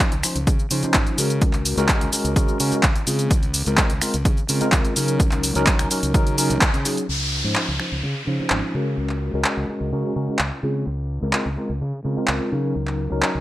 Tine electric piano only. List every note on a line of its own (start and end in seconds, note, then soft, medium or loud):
0.00 0.13 F3 medium
0.00 0.13 C#4 medium
0.00 0.13 D#4 medium
0.24 0.36 F3 medium
0.24 0.37 C#4 medium
0.24 0.37 D#4 medium
0.24 0.37 C5 medium
0.71 0.81 F3 medium
0.71 0.81 C#4 medium
0.71 0.81 D#4 medium
0.71 0.81 C5 medium
0.83 1.16 F3 medium
0.83 1.16 C#4 medium
0.83 1.16 D#4 medium
0.83 1.16 C5 medium
1.18 1.75 G#3 medium
1.18 1.75 C#4 medium
1.18 1.75 F#4 medium
1.18 1.75 A#4 medium
1.78 1.86 G#3 medium
1.78 1.87 C#4 medium
1.78 1.87 F#4 medium
1.78 1.87 A#4 loud
2.13 2.33 G#3 medium
2.13 2.34 C#4 medium
2.13 2.34 F#4 medium
2.13 2.34 A#4 medium
2.36 2.57 G#3 loud
2.36 2.57 C#4 medium
2.36 2.57 F#4 medium
2.36 2.58 A#4 loud
2.60 2.80 G#3 medium
2.60 2.80 C#4 medium
2.60 2.80 F#4 medium
2.60 2.81 A#4 medium
3.07 3.27 G#3 medium
3.07 3.28 C4 medium
3.07 3.28 F4 medium
3.07 3.28 G#4 medium
3.67 3.76 G#3 medium
3.67 3.76 C4 medium
3.67 3.77 F4 medium
3.67 3.77 A#4 medium
3.78 3.91 G#3 medium
3.78 3.91 C4 medium
3.78 3.91 F4 medium
3.78 3.91 A#4 medium
4.01 4.14 G#3 medium
4.01 4.14 C4 medium
4.01 4.15 F4 medium
4.01 4.15 A#4 medium
4.49 4.59 G#3 medium
4.49 4.59 C4 medium
4.49 4.59 F4 medium
4.49 4.59 A#4 medium
4.61 4.93 G#3 medium
4.61 4.93 C4 medium
4.61 4.93 F4 medium
4.61 4.94 A#4 medium
4.95 5.52 F#3 medium
4.95 5.53 C#4 medium
4.95 5.53 D#4 medium
4.95 5.53 A#4 medium
5.55 5.64 F#3 loud
5.55 5.64 C#4 medium
5.55 5.64 D#4 medium
5.55 5.65 A#4 loud
5.67 5.87 F#3 medium
5.67 5.87 C#4 medium
5.67 5.87 D#4 medium
5.67 5.88 A#4 loud
5.91 6.12 F#3 medium
5.91 6.12 C#4 medium
5.91 6.12 D#4 medium
5.91 6.12 A#4 medium
6.14 6.35 F#3 loud
6.14 6.35 C#4 medium
6.14 6.35 D#4 medium
6.14 6.35 A#4 loud
6.38 6.58 F#3 medium
6.38 6.58 C#4 medium
6.38 6.58 D#4 medium
6.38 6.58 A#4 medium
6.85 7.06 F#3 medium
6.85 7.06 C#4 medium
6.85 7.06 D#4 medium
6.85 7.06 G#4 medium
7.44 7.54 F3 medium
7.44 7.54 C#4 medium
7.44 7.54 D#4 medium
7.44 7.54 C5 medium
7.56 7.69 F3 medium
7.56 7.69 C#4 medium
7.56 7.69 D#4 medium
7.56 7.69 C5 medium
7.80 7.92 F3 medium
7.80 7.93 C#4 medium
7.80 7.93 D#4 medium
7.80 7.93 C5 medium
8.27 8.37 F3 medium
8.27 8.37 C#4 medium
8.27 8.37 D#4 medium
8.27 8.38 C5 medium
8.39 8.71 F3 medium
8.39 8.72 C#4 medium
8.39 8.72 D#4 medium
8.39 8.72 C5 medium
8.74 9.30 G#3 medium
8.74 9.31 C#4 medium
8.74 9.31 F#4 medium
8.74 9.31 A#4 medium
9.34 9.42 G#3 medium
9.34 9.43 C#4 medium
9.34 9.43 F#4 medium
9.34 9.43 A#4 loud
9.46 9.65 G#3 medium
9.46 9.65 C#4 medium
9.46 9.66 F#4 medium
9.46 9.66 A#4 medium
9.69 9.90 G#3 medium
9.69 9.90 C#4 medium
9.69 9.90 F#4 medium
9.69 9.90 A#4 medium
9.92 10.13 G#3 medium
9.92 10.13 C#4 medium
9.92 10.13 F#4 medium
9.92 10.13 A#4 loud
10.16 10.36 G#3 medium
10.16 10.36 C#4 medium
10.16 10.36 F#4 medium
10.16 10.36 A#4 medium
10.63 10.83 G#3 medium
10.63 10.83 C4 medium
10.63 10.84 F4 medium
10.63 10.84 G#4 medium
11.22 11.32 G#3 medium
11.22 11.32 C4 medium
11.22 11.32 F4 medium
11.22 11.32 A#4 medium
11.34 11.47 G#3 medium
11.34 11.47 C4 medium
11.34 11.47 F4 medium
11.34 11.47 A#4 medium
11.57 11.70 G#3 medium
11.57 11.70 C4 medium
11.57 11.70 F4 medium
11.57 11.70 A#4 medium
12.04 12.15 G#3 medium
12.04 12.15 C4 medium
12.04 12.15 F4 medium
12.04 12.15 A#4 medium
12.17 12.49 G#3 medium
12.17 12.49 C4 medium
12.17 12.50 F4 medium
12.17 12.50 A#4 medium
12.51 13.08 F#3 medium
12.51 13.08 C#4 medium
12.51 13.09 D#4 medium
12.51 13.09 A#4 medium
13.11 13.20 F#3 medium
13.11 13.20 C#4 medium
13.11 13.20 D#4 medium
13.11 13.20 A#4 loud
13.22 13.40 F#3 medium
13.22 13.40 C#4 medium
13.22 13.40 D#4 medium
13.22 13.40 A#4 medium